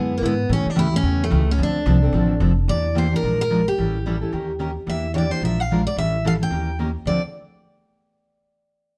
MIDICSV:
0, 0, Header, 1, 5, 480
1, 0, Start_track
1, 0, Key_signature, -1, "minor"
1, 0, Tempo, 273473
1, 871, Time_signature, 4, 2, 24, 8
1, 15756, End_track
2, 0, Start_track
2, 0, Title_t, "Steel-string acoustic guitar"
2, 0, Program_c, 0, 25
2, 0, Note_on_c, 0, 59, 93
2, 309, Note_on_c, 0, 58, 60
2, 347, Note_off_c, 0, 59, 0
2, 401, Note_off_c, 0, 58, 0
2, 448, Note_on_c, 0, 59, 91
2, 913, Note_off_c, 0, 59, 0
2, 927, Note_on_c, 0, 61, 92
2, 1155, Note_off_c, 0, 61, 0
2, 1223, Note_on_c, 0, 62, 83
2, 1384, Note_on_c, 0, 64, 97
2, 1389, Note_off_c, 0, 62, 0
2, 1648, Note_off_c, 0, 64, 0
2, 1686, Note_on_c, 0, 61, 97
2, 2147, Note_off_c, 0, 61, 0
2, 2170, Note_on_c, 0, 57, 85
2, 2629, Note_off_c, 0, 57, 0
2, 2657, Note_on_c, 0, 61, 89
2, 2830, Note_off_c, 0, 61, 0
2, 2864, Note_on_c, 0, 62, 88
2, 4194, Note_off_c, 0, 62, 0
2, 4726, Note_on_c, 0, 74, 97
2, 5210, Note_off_c, 0, 74, 0
2, 5232, Note_on_c, 0, 72, 94
2, 5536, Note_off_c, 0, 72, 0
2, 5543, Note_on_c, 0, 70, 90
2, 5967, Note_off_c, 0, 70, 0
2, 5988, Note_on_c, 0, 70, 91
2, 6412, Note_off_c, 0, 70, 0
2, 6458, Note_on_c, 0, 67, 79
2, 7809, Note_off_c, 0, 67, 0
2, 8592, Note_on_c, 0, 76, 81
2, 9010, Note_off_c, 0, 76, 0
2, 9023, Note_on_c, 0, 73, 56
2, 9058, Note_off_c, 0, 73, 0
2, 9092, Note_on_c, 0, 74, 77
2, 9322, Note_off_c, 0, 74, 0
2, 9322, Note_on_c, 0, 72, 75
2, 9524, Note_off_c, 0, 72, 0
2, 9564, Note_on_c, 0, 76, 85
2, 9829, Note_off_c, 0, 76, 0
2, 9829, Note_on_c, 0, 77, 90
2, 10290, Note_off_c, 0, 77, 0
2, 10297, Note_on_c, 0, 74, 86
2, 10473, Note_off_c, 0, 74, 0
2, 10504, Note_on_c, 0, 76, 92
2, 10980, Note_off_c, 0, 76, 0
2, 11012, Note_on_c, 0, 77, 98
2, 11100, Note_off_c, 0, 77, 0
2, 11281, Note_on_c, 0, 79, 81
2, 11892, Note_off_c, 0, 79, 0
2, 12410, Note_on_c, 0, 74, 82
2, 12654, Note_off_c, 0, 74, 0
2, 15756, End_track
3, 0, Start_track
3, 0, Title_t, "Steel-string acoustic guitar"
3, 0, Program_c, 1, 25
3, 0, Note_on_c, 1, 50, 63
3, 0, Note_on_c, 1, 56, 54
3, 0, Note_on_c, 1, 59, 61
3, 0, Note_on_c, 1, 64, 66
3, 0, Note_on_c, 1, 68, 78
3, 242, Note_off_c, 1, 50, 0
3, 244, Note_off_c, 1, 56, 0
3, 245, Note_off_c, 1, 59, 0
3, 248, Note_off_c, 1, 64, 0
3, 250, Note_off_c, 1, 68, 0
3, 389, Note_on_c, 1, 50, 80
3, 398, Note_on_c, 1, 64, 104
3, 399, Note_on_c, 1, 56, 93
3, 399, Note_on_c, 1, 59, 88
3, 415, Note_on_c, 1, 68, 88
3, 570, Note_off_c, 1, 50, 0
3, 575, Note_off_c, 1, 64, 0
3, 576, Note_off_c, 1, 56, 0
3, 576, Note_off_c, 1, 59, 0
3, 584, Note_off_c, 1, 68, 0
3, 857, Note_on_c, 1, 49, 65
3, 868, Note_on_c, 1, 52, 68
3, 872, Note_on_c, 1, 57, 67
3, 872, Note_on_c, 1, 67, 63
3, 880, Note_on_c, 1, 61, 73
3, 1188, Note_off_c, 1, 49, 0
3, 1193, Note_off_c, 1, 52, 0
3, 1195, Note_off_c, 1, 57, 0
3, 1195, Note_off_c, 1, 67, 0
3, 1199, Note_off_c, 1, 61, 0
3, 1323, Note_on_c, 1, 49, 90
3, 1328, Note_on_c, 1, 52, 110
3, 1331, Note_on_c, 1, 61, 99
3, 1334, Note_on_c, 1, 57, 107
3, 1342, Note_on_c, 1, 67, 103
3, 1517, Note_off_c, 1, 49, 0
3, 1519, Note_off_c, 1, 52, 0
3, 1521, Note_off_c, 1, 61, 0
3, 1522, Note_off_c, 1, 57, 0
3, 1526, Note_off_c, 1, 67, 0
3, 1610, Note_on_c, 1, 67, 55
3, 1628, Note_on_c, 1, 61, 52
3, 1642, Note_on_c, 1, 57, 44
3, 1796, Note_off_c, 1, 57, 0
3, 1796, Note_off_c, 1, 61, 0
3, 1798, Note_off_c, 1, 67, 0
3, 1800, Note_on_c, 1, 49, 65
3, 1816, Note_on_c, 1, 52, 67
3, 1817, Note_on_c, 1, 61, 73
3, 1818, Note_on_c, 1, 57, 69
3, 1819, Note_on_c, 1, 67, 75
3, 2139, Note_off_c, 1, 49, 0
3, 2147, Note_off_c, 1, 52, 0
3, 2147, Note_off_c, 1, 57, 0
3, 2147, Note_off_c, 1, 61, 0
3, 2148, Note_off_c, 1, 67, 0
3, 2287, Note_on_c, 1, 52, 89
3, 2288, Note_on_c, 1, 49, 89
3, 2292, Note_on_c, 1, 57, 99
3, 2309, Note_on_c, 1, 61, 89
3, 2313, Note_on_c, 1, 67, 99
3, 2478, Note_off_c, 1, 52, 0
3, 2479, Note_off_c, 1, 49, 0
3, 2481, Note_off_c, 1, 57, 0
3, 2489, Note_off_c, 1, 61, 0
3, 2491, Note_off_c, 1, 67, 0
3, 2770, Note_on_c, 1, 50, 64
3, 2780, Note_on_c, 1, 53, 67
3, 2782, Note_on_c, 1, 60, 64
3, 2784, Note_on_c, 1, 62, 62
3, 2794, Note_on_c, 1, 69, 59
3, 3103, Note_off_c, 1, 50, 0
3, 3108, Note_off_c, 1, 53, 0
3, 3109, Note_off_c, 1, 60, 0
3, 3110, Note_off_c, 1, 62, 0
3, 3115, Note_off_c, 1, 69, 0
3, 3272, Note_on_c, 1, 53, 90
3, 3272, Note_on_c, 1, 60, 105
3, 3274, Note_on_c, 1, 50, 97
3, 3278, Note_on_c, 1, 62, 108
3, 3291, Note_on_c, 1, 69, 112
3, 3450, Note_off_c, 1, 53, 0
3, 3450, Note_off_c, 1, 60, 0
3, 3451, Note_off_c, 1, 50, 0
3, 3453, Note_off_c, 1, 62, 0
3, 3460, Note_off_c, 1, 69, 0
3, 3552, Note_on_c, 1, 69, 64
3, 3560, Note_on_c, 1, 62, 49
3, 3577, Note_on_c, 1, 60, 49
3, 3739, Note_off_c, 1, 60, 0
3, 3744, Note_off_c, 1, 69, 0
3, 3748, Note_off_c, 1, 62, 0
3, 3752, Note_on_c, 1, 50, 67
3, 3753, Note_on_c, 1, 53, 73
3, 3760, Note_on_c, 1, 60, 73
3, 3770, Note_on_c, 1, 62, 66
3, 3777, Note_on_c, 1, 69, 68
3, 4074, Note_off_c, 1, 50, 0
3, 4074, Note_off_c, 1, 53, 0
3, 4078, Note_off_c, 1, 60, 0
3, 4083, Note_off_c, 1, 62, 0
3, 4086, Note_off_c, 1, 69, 0
3, 4222, Note_on_c, 1, 50, 85
3, 4225, Note_on_c, 1, 53, 88
3, 4225, Note_on_c, 1, 60, 88
3, 4238, Note_on_c, 1, 62, 94
3, 4241, Note_on_c, 1, 69, 88
3, 4405, Note_off_c, 1, 50, 0
3, 4406, Note_off_c, 1, 53, 0
3, 4406, Note_off_c, 1, 60, 0
3, 4413, Note_off_c, 1, 62, 0
3, 4415, Note_off_c, 1, 69, 0
3, 4702, Note_on_c, 1, 52, 52
3, 4702, Note_on_c, 1, 58, 52
3, 4709, Note_on_c, 1, 62, 54
3, 4714, Note_on_c, 1, 67, 63
3, 5028, Note_off_c, 1, 52, 0
3, 5029, Note_off_c, 1, 58, 0
3, 5032, Note_off_c, 1, 62, 0
3, 5034, Note_off_c, 1, 67, 0
3, 5173, Note_on_c, 1, 52, 79
3, 5183, Note_on_c, 1, 58, 93
3, 5196, Note_on_c, 1, 62, 88
3, 5196, Note_on_c, 1, 67, 94
3, 5360, Note_off_c, 1, 52, 0
3, 5365, Note_off_c, 1, 58, 0
3, 5372, Note_off_c, 1, 62, 0
3, 5372, Note_off_c, 1, 67, 0
3, 5465, Note_on_c, 1, 67, 53
3, 5489, Note_on_c, 1, 62, 52
3, 5500, Note_on_c, 1, 58, 47
3, 5656, Note_off_c, 1, 62, 0
3, 5660, Note_off_c, 1, 67, 0
3, 5670, Note_off_c, 1, 58, 0
3, 5673, Note_on_c, 1, 53, 59
3, 5675, Note_on_c, 1, 56, 51
3, 5677, Note_on_c, 1, 62, 57
3, 5684, Note_on_c, 1, 65, 59
3, 5689, Note_on_c, 1, 70, 71
3, 5994, Note_off_c, 1, 53, 0
3, 5995, Note_off_c, 1, 56, 0
3, 5996, Note_off_c, 1, 62, 0
3, 6000, Note_off_c, 1, 65, 0
3, 6002, Note_off_c, 1, 70, 0
3, 6144, Note_on_c, 1, 53, 77
3, 6153, Note_on_c, 1, 56, 78
3, 6156, Note_on_c, 1, 62, 80
3, 6159, Note_on_c, 1, 70, 81
3, 6161, Note_on_c, 1, 65, 74
3, 6326, Note_off_c, 1, 53, 0
3, 6330, Note_off_c, 1, 56, 0
3, 6332, Note_off_c, 1, 62, 0
3, 6333, Note_off_c, 1, 70, 0
3, 6334, Note_off_c, 1, 65, 0
3, 6641, Note_on_c, 1, 52, 55
3, 6650, Note_on_c, 1, 61, 61
3, 6656, Note_on_c, 1, 55, 59
3, 6667, Note_on_c, 1, 64, 53
3, 6673, Note_on_c, 1, 69, 55
3, 6958, Note_off_c, 1, 52, 0
3, 6963, Note_off_c, 1, 61, 0
3, 6966, Note_off_c, 1, 55, 0
3, 6972, Note_off_c, 1, 64, 0
3, 6974, Note_off_c, 1, 69, 0
3, 7122, Note_on_c, 1, 52, 78
3, 7131, Note_on_c, 1, 55, 95
3, 7131, Note_on_c, 1, 61, 80
3, 7136, Note_on_c, 1, 64, 95
3, 7149, Note_on_c, 1, 69, 86
3, 7295, Note_off_c, 1, 52, 0
3, 7299, Note_off_c, 1, 55, 0
3, 7300, Note_off_c, 1, 61, 0
3, 7302, Note_off_c, 1, 64, 0
3, 7308, Note_off_c, 1, 69, 0
3, 7392, Note_on_c, 1, 69, 51
3, 7405, Note_on_c, 1, 64, 54
3, 7423, Note_on_c, 1, 61, 43
3, 7583, Note_off_c, 1, 61, 0
3, 7584, Note_off_c, 1, 69, 0
3, 7591, Note_off_c, 1, 64, 0
3, 7591, Note_on_c, 1, 51, 61
3, 7604, Note_on_c, 1, 58, 57
3, 7604, Note_on_c, 1, 61, 50
3, 7607, Note_on_c, 1, 70, 67
3, 7608, Note_on_c, 1, 67, 64
3, 7914, Note_off_c, 1, 51, 0
3, 7920, Note_off_c, 1, 58, 0
3, 7920, Note_off_c, 1, 61, 0
3, 7922, Note_off_c, 1, 67, 0
3, 7922, Note_off_c, 1, 70, 0
3, 8058, Note_on_c, 1, 51, 82
3, 8068, Note_on_c, 1, 58, 76
3, 8070, Note_on_c, 1, 61, 91
3, 8074, Note_on_c, 1, 67, 79
3, 8083, Note_on_c, 1, 70, 94
3, 8243, Note_off_c, 1, 51, 0
3, 8249, Note_off_c, 1, 58, 0
3, 8249, Note_off_c, 1, 61, 0
3, 8251, Note_off_c, 1, 67, 0
3, 8255, Note_off_c, 1, 70, 0
3, 8540, Note_on_c, 1, 52, 51
3, 8557, Note_on_c, 1, 58, 55
3, 8559, Note_on_c, 1, 62, 57
3, 8565, Note_on_c, 1, 67, 58
3, 8869, Note_off_c, 1, 52, 0
3, 8877, Note_off_c, 1, 58, 0
3, 8878, Note_off_c, 1, 62, 0
3, 8881, Note_off_c, 1, 67, 0
3, 9039, Note_on_c, 1, 52, 82
3, 9041, Note_on_c, 1, 58, 83
3, 9046, Note_on_c, 1, 62, 89
3, 9052, Note_on_c, 1, 67, 90
3, 9214, Note_off_c, 1, 52, 0
3, 9215, Note_off_c, 1, 58, 0
3, 9217, Note_off_c, 1, 62, 0
3, 9220, Note_off_c, 1, 67, 0
3, 9288, Note_on_c, 1, 67, 57
3, 9302, Note_on_c, 1, 62, 51
3, 9315, Note_on_c, 1, 58, 43
3, 9492, Note_off_c, 1, 67, 0
3, 9499, Note_off_c, 1, 62, 0
3, 9506, Note_off_c, 1, 58, 0
3, 9523, Note_on_c, 1, 53, 53
3, 9527, Note_on_c, 1, 56, 54
3, 9528, Note_on_c, 1, 65, 66
3, 9536, Note_on_c, 1, 62, 63
3, 9537, Note_on_c, 1, 70, 62
3, 9840, Note_off_c, 1, 53, 0
3, 9842, Note_off_c, 1, 56, 0
3, 9843, Note_off_c, 1, 65, 0
3, 9847, Note_off_c, 1, 62, 0
3, 9847, Note_off_c, 1, 70, 0
3, 10025, Note_on_c, 1, 53, 75
3, 10036, Note_on_c, 1, 62, 73
3, 10037, Note_on_c, 1, 56, 76
3, 10039, Note_on_c, 1, 65, 83
3, 10048, Note_on_c, 1, 70, 77
3, 10187, Note_off_c, 1, 53, 0
3, 10193, Note_off_c, 1, 56, 0
3, 10193, Note_off_c, 1, 62, 0
3, 10194, Note_off_c, 1, 65, 0
3, 10198, Note_off_c, 1, 70, 0
3, 10497, Note_on_c, 1, 52, 58
3, 10497, Note_on_c, 1, 55, 51
3, 10506, Note_on_c, 1, 61, 58
3, 10508, Note_on_c, 1, 64, 54
3, 10520, Note_on_c, 1, 69, 62
3, 10807, Note_off_c, 1, 52, 0
3, 10807, Note_off_c, 1, 55, 0
3, 10812, Note_off_c, 1, 61, 0
3, 10812, Note_off_c, 1, 64, 0
3, 10818, Note_off_c, 1, 69, 0
3, 10964, Note_on_c, 1, 52, 85
3, 10972, Note_on_c, 1, 55, 90
3, 10975, Note_on_c, 1, 64, 93
3, 10977, Note_on_c, 1, 61, 81
3, 10991, Note_on_c, 1, 69, 95
3, 11137, Note_off_c, 1, 52, 0
3, 11141, Note_off_c, 1, 55, 0
3, 11142, Note_off_c, 1, 64, 0
3, 11143, Note_off_c, 1, 61, 0
3, 11150, Note_off_c, 1, 69, 0
3, 11236, Note_on_c, 1, 69, 53
3, 11256, Note_on_c, 1, 64, 45
3, 11270, Note_on_c, 1, 61, 46
3, 11414, Note_off_c, 1, 61, 0
3, 11427, Note_off_c, 1, 69, 0
3, 11433, Note_on_c, 1, 58, 52
3, 11434, Note_on_c, 1, 51, 50
3, 11435, Note_off_c, 1, 64, 0
3, 11435, Note_on_c, 1, 61, 60
3, 11443, Note_on_c, 1, 67, 57
3, 11447, Note_on_c, 1, 70, 65
3, 11755, Note_off_c, 1, 51, 0
3, 11755, Note_off_c, 1, 58, 0
3, 11756, Note_off_c, 1, 61, 0
3, 11760, Note_off_c, 1, 67, 0
3, 11762, Note_off_c, 1, 70, 0
3, 11916, Note_on_c, 1, 51, 77
3, 11920, Note_on_c, 1, 61, 82
3, 11924, Note_on_c, 1, 58, 78
3, 11936, Note_on_c, 1, 67, 77
3, 11938, Note_on_c, 1, 70, 80
3, 12093, Note_off_c, 1, 51, 0
3, 12095, Note_off_c, 1, 61, 0
3, 12097, Note_off_c, 1, 58, 0
3, 12103, Note_off_c, 1, 67, 0
3, 12104, Note_off_c, 1, 70, 0
3, 12406, Note_on_c, 1, 50, 64
3, 12407, Note_on_c, 1, 53, 69
3, 12421, Note_on_c, 1, 60, 67
3, 12431, Note_on_c, 1, 62, 71
3, 12432, Note_on_c, 1, 69, 77
3, 12616, Note_off_c, 1, 50, 0
3, 12617, Note_off_c, 1, 53, 0
3, 12623, Note_off_c, 1, 60, 0
3, 12629, Note_off_c, 1, 62, 0
3, 12629, Note_off_c, 1, 69, 0
3, 15756, End_track
4, 0, Start_track
4, 0, Title_t, "Upright bass"
4, 0, Program_c, 2, 32
4, 0, Note_on_c, 2, 42, 87
4, 364, Note_off_c, 2, 42, 0
4, 374, Note_on_c, 2, 44, 86
4, 847, Note_off_c, 2, 44, 0
4, 867, Note_on_c, 2, 45, 86
4, 1123, Note_off_c, 2, 45, 0
4, 1344, Note_on_c, 2, 38, 88
4, 1798, Note_off_c, 2, 38, 0
4, 1809, Note_on_c, 2, 40, 86
4, 2284, Note_off_c, 2, 40, 0
4, 2303, Note_on_c, 2, 37, 98
4, 2771, Note_off_c, 2, 37, 0
4, 2783, Note_on_c, 2, 38, 91
4, 3250, Note_off_c, 2, 38, 0
4, 3259, Note_on_c, 2, 36, 101
4, 3719, Note_off_c, 2, 36, 0
4, 3729, Note_on_c, 2, 33, 88
4, 4203, Note_off_c, 2, 33, 0
4, 4214, Note_on_c, 2, 29, 98
4, 4686, Note_off_c, 2, 29, 0
4, 4705, Note_on_c, 2, 40, 82
4, 5474, Note_off_c, 2, 40, 0
4, 5661, Note_on_c, 2, 34, 75
4, 6431, Note_off_c, 2, 34, 0
4, 6636, Note_on_c, 2, 33, 80
4, 7401, Note_off_c, 2, 33, 0
4, 7591, Note_on_c, 2, 39, 77
4, 8358, Note_off_c, 2, 39, 0
4, 8544, Note_on_c, 2, 40, 84
4, 9314, Note_off_c, 2, 40, 0
4, 9501, Note_on_c, 2, 34, 78
4, 10272, Note_off_c, 2, 34, 0
4, 10469, Note_on_c, 2, 33, 80
4, 11236, Note_off_c, 2, 33, 0
4, 11418, Note_on_c, 2, 39, 79
4, 12190, Note_off_c, 2, 39, 0
4, 12381, Note_on_c, 2, 38, 79
4, 12639, Note_off_c, 2, 38, 0
4, 15756, End_track
5, 0, Start_track
5, 0, Title_t, "Muted upright bass strokes"
5, 1154, Note_on_c, 9, 29, 44
5, 1330, Note_off_c, 9, 29, 0
5, 15756, End_track
0, 0, End_of_file